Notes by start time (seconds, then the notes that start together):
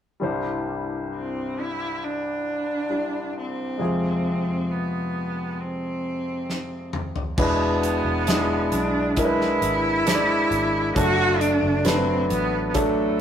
0.20 C2 G2 G3 D4 E4 C5
1.15 C4
1.60 E4
2.04 D4
2.89 G3 D4 E4 D5
3.37 C4
3.77 F2 C3 G#3 F4 G#4
4.71 B3
5.60 C4
6.50 snare
6.93 mid tom
7.16 floor tom
7.38 E1 B2 G#3 B3 D4 E4 B4, kick, crash
7.83 closed hi-hat
8.05 E1
8.27 G#3 D4 E4 G#4, snare, closed hi-hat
8.72 B1 D4, closed hi-hat
9.16 G#3 D4 E4 A#4, kick, closed hi-hat
9.25 B4
9.41 snare
9.61 G#1, closed hi-hat
10.06 G#3 D4 E4 C5, snare, closed hi-hat
10.14 D5
10.51 G#1, closed hi-hat
10.95 F#1 F#3 A3 D4 F#4 A4, kick, closed hi-hat
11.41 D4, closed hi-hat
11.62 F#1
11.85 F#3 A3 C4 D4 B4, snare, closed hi-hat
12.30 A1 B3, closed hi-hat
12.69 B3
12.74 F#3 A3 D4 A4, kick, closed hi-hat